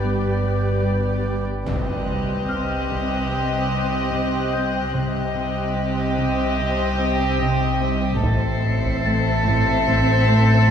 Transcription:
Already playing: synth drone G1, cello section G2, viola section B3 G4, ambient pad B4 D5 G5, violin section D5
0.02 cello section G2
0.42 cello section G3
0.83 cello section G2
1.25 cello section G3
1.66 double bass section C2, synth drone C2, cello section C3, viola section C4, violin section G4 D#5 C6 F#6, ambient pad C5 D#5 G5, taiko, impact
2.07 cello section C3
2.48 cello section C4, celesta F6
2.89 cello section C3, taiko
3.30 cello section C3
3.71 cello section C4
4.12 cello section C3
4.52 cello section C4, celesta G5 G6
4.94 synth drone C2, double bass section C2, cello section C3, viola section C4, violin section G4 D#5, ambient pad C5 D#5 G5
5.36 cello section C3
5.77 cello section C4
6.18 cello section C3
6.59 cello section C3
7.00 cello section C4
7.42 cello section C3
7.82 cello section C4
8.22 synth drone A1, double bass section A1, cello section A2, viola section C4, violin section A4 E5 C7 C#7, ambient pad C5 E5 A5, taiko
8.65 cello section A2
8.85 taiko
9.06 cello section A3, celesta A6
9.46 cello section A2
9.88 cello section A2, taiko
10.29 cello section A3

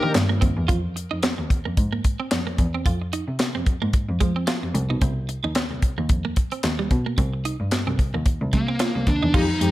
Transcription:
Already playing: analog synth pad C3 D#3 A#3 F4 D5, analog polysynth A#3 D4 D#4 G4, lead electric guitar A#4
0.03 cello D#3, clean electric guitar C4
0.14 cello G2, muted clean electric guitar stroke, snare, clap, closed hi-hat
0.29 clean electric guitar A#3
0.41 cello D#2, clean electric guitar C4, kick, closed hi-hat
0.57 cello E2
0.68 cello F2, clean electric guitar F4, kick, closed hi-hat
0.96 muted clean electric guitar stroke, closed hi-hat
1.11 cello F2, clean electric guitar D#4
1.23 clean electric guitar C4, snare, clap, closed hi-hat
1.38 cello D#2, muted clean electric guitar stroke
1.50 kick, closed hi-hat
1.65 cello F2, clean electric guitar A#3
1.77 cello G#2, kick, closed hi-hat
1.92 clean electric guitar A#3
2.04 muted clean electric guitar stroke, kick, closed hi-hat
2.20 clean electric guitar C4
2.31 cello F2, snare, clap, closed hi-hat
2.47 clean electric guitar A#3
2.58 cello E2, muted clean electric guitar stroke, kick, closed hi-hat
2.74 clean electric guitar C4
2.86 cello F2, clean electric guitar F4, kick, closed hi-hat
3.02 muted clean electric guitar stroke
3.13 clean electric guitar D#4, closed hi-hat
3.27 cello C3
3.39 snare, clap, closed hi-hat
3.55 cello F2, clean electric guitar C4
3.66 muted clean electric guitar stroke, kick, closed hi-hat
3.82 cello G#2, clean electric guitar A#3
3.93 muted clean electric guitar stroke, kick, closed hi-hat
4.09 cello F2
4.20 cello F3, clean electric guitar G#3, kick, closed hi-hat
4.36 clean electric guitar C4
4.47 clean electric guitar F4, snare, clap, closed hi-hat
4.62 cello F2, muted clean electric guitar stroke
4.74 cello C2, closed hi-hat
4.89 cello B2, clean electric guitar D#4
5.01 cello C2, clean electric guitar C4, kick, closed hi-hat
5.29 muted clean electric guitar stroke, closed hi-hat
5.43 cello D#2, clean electric guitar D#4
5.55 clean electric guitar C4, snare, clap, closed hi-hat
5.71 cello C2, muted clean electric guitar stroke
5.82 kick, closed hi-hat
5.98 cello D#2, clean electric guitar A#3
6.09 cello F2, kick, closed hi-hat
6.25 clean electric guitar A#3
6.36 muted clean electric guitar stroke, kick, closed hi-hat
6.51 clean electric guitar C4, closed hi-hat
6.63 cello D#2, snare, clap, closed hi-hat
6.79 clean electric guitar G3
6.91 cello B2, muted clean electric guitar stroke, kick, closed hi-hat
7.06 clean electric guitar A#3
7.18 cello C2, clean electric guitar C4, kick, closed hi-hat
7.33 muted clean electric guitar stroke
7.45 clean electric guitar D#4, closed hi-hat
7.60 cello G2
7.71 snare, clap, closed hi-hat
7.87 cello C2, clean electric guitar C4
7.99 muted clean electric guitar stroke, kick, closed hi-hat
8.14 cello D#2, clean electric guitar A#3
8.26 muted clean electric guitar stroke, kick, closed hi-hat
8.41 cello C2
8.53 cello C3, clean electric guitar G3, lead electric guitar A#3, kick, closed hi-hat
8.68 clean electric guitar C4
8.79 clean electric guitar F4, snare, clap, closed hi-hat
8.95 cello C2, muted clean electric guitar stroke
9.07 cello D#2, lead electric guitar D4, kick, closed hi-hat
9.23 cello E2, clean electric guitar D#4
9.33 cello F2, analog synth pad D#3 G#3 G4 F5, analog polysynth G#3 C4 D#4 G4, lead electric guitar D#4, clean electric guitar F4, kick, crash
9.61 cello F2, analog polysynth G#3 C4 D#4 G4, muted clean electric guitar stroke, closed hi-hat

